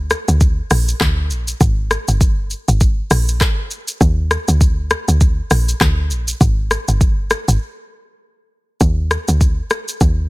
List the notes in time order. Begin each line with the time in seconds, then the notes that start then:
Already playing: D2
0.10 cross-stick, shaker
0.28 D2, shaker
0.41 kick, shaker
0.71 A#1, cross-stick, open hi-hat, shaker
0.88 shaker
1.01 D2, kick, cross-stick, clap, shaker
1.30 A#1, shaker
1.48 shaker
1.61 G#1, kick, shaker
1.91 cross-stick, shaker
2.08 G1, shaker
2.21 kick, shaker
2.50 shaker
2.68 G#1, shaker
2.81 kick, shaker
3.11 A#1, cross-stick, open hi-hat, shaker
3.29 shaker
3.41 kick, cross-stick, clap, shaker
3.71 shaker
3.88 shaker
4.01 D#2, kick, shaker
4.31 cross-stick, shaker
4.48 D2, shaker
4.61 kick, shaker
4.90 cross-stick, shaker
5.08 D2, shaker
5.21 kick, shaker
5.51 A#1, cross-stick, open hi-hat, shaker
5.69 shaker
5.81 D2, kick, cross-stick, clap, shaker
6.11 A#1, shaker
6.28 shaker
6.41 G#1, kick, shaker
6.71 cross-stick, shaker
6.88 G1, shaker
7.01 kick, shaker
7.30 cross-stick, shaker
7.48 G#1, shaker
8.81 D#2, kick, shaker
9.11 cross-stick, shaker
9.28 D2, shaker
9.41 kick, shaker
9.70 cross-stick, shaker
9.88 shaker
10.01 D#2, kick, shaker